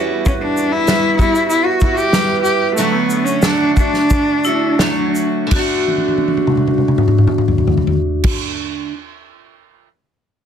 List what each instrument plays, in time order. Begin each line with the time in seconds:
Already playing: steel-string acoustic guitar E2 E3 G3 B3 E4 F#4
0.26 cello C#4, kick, shaker
0.42 cello D4
0.57 shaker
0.72 cello E4
0.87 steel-string acoustic guitar G3 B3 E4 F#4, snare, clap, shaker
1.17 steel-string acoustic guitar G3 B3 E4 F#4, cello E4, kick, shaker
1.35 shaker
1.49 cello E4, shaker
1.65 cello F#4
1.81 steel-string acoustic guitar G3 B3 E4 F#4, kick, shaker
1.97 cello G4, shaker
2.13 steel-string acoustic guitar G3 B3 E4, snare, clap, shaker
2.43 cello G4, shaker
2.76 steel-string acoustic guitar D3 F#3 A3 D4 F#4, cello A3, shaker
2.92 cello B3
3.10 shaker
3.25 cello C#4, shaker
3.42 steel-string acoustic guitar F#3 A3 D4 F#4, cello D4, snare, clap, shaker
3.77 steel-string acoustic guitar A3 D4 F#4, cello D4, kick, shaker
3.93 snare
4.10 kick, shaker
4.44 steel-string acoustic guitar A3 D4 F#4, vibraphone E4, shaker
4.79 steel-string acoustic guitar F#3 A3 D4 F#4, vibraphone D4, snare, clap, shaker
5.15 shaker
5.47 steel-string acoustic guitar D3
5.51 steel-string acoustic guitar A3, vibraphone F#4, kick, clap, crash
5.56 steel-string acoustic guitar D4 F#4
5.88 high tom
5.98 high tom
6.08 high tom
6.18 high tom
6.28 high tom
6.37 high tom
6.47 mid tom
6.57 mid tom
6.67 mid tom
6.78 mid tom
6.88 mid tom
6.98 mid tom
7.08 mid tom
7.18 mid tom
7.27 mid tom
7.38 mid tom
7.48 floor tom
7.58 floor tom
7.67 floor tom
7.77 floor tom
7.87 floor tom
8.24 kick, crash